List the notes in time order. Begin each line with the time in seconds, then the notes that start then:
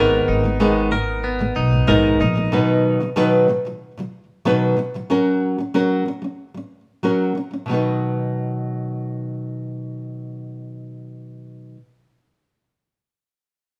Already playing: G#1 G#2 D#3 G#3 B3 D#4 A#4
0.28 G#1 D#4
0.44 G#2 D#3 G#3
0.60 G#2 D#3 G#3 B3 D#4 A#4
0.92 G#2 D#3 G#3 A#4
1.24 B3
1.39 G#2 D#3 G#3
1.56 B1 D#4
1.71 G#2 D#3 G#3
1.87 A#1 G#2 D#3 G#3 B3 D#4 A#4
2.20 A#1 G#2 D#3 G#3 D#4
2.35 G#2 D#3 G#3
2.52 B2 D#3 F#3 B3 D#4 B4
3.00 B2 D#3 F#3
3.16 B2 D#3 F#3 B3 D#4 B4
3.48 B2 D#3 F#3
3.65 B2 D#3 F#3
3.97 B2 D#3 F#3
4.45 B2 D#3 F#3 B3 D#4 B4
4.77 B2 D#3 F#3
4.94 B2 D#3 F#3
5.10 F#3 C#4 F#4 A#4
5.58 F#3 C#4
5.74 F#3 C#4 F#4 A#4
6.06 F#3
6.22 F#3 C#4
6.54 F#3 C#4
7.03 F#3 C#4 F#4 A#4
7.35 F#3 C#4
7.51 F#3 C#4
7.66 B2 D#3 F#3
7.71 B3 D#4 B4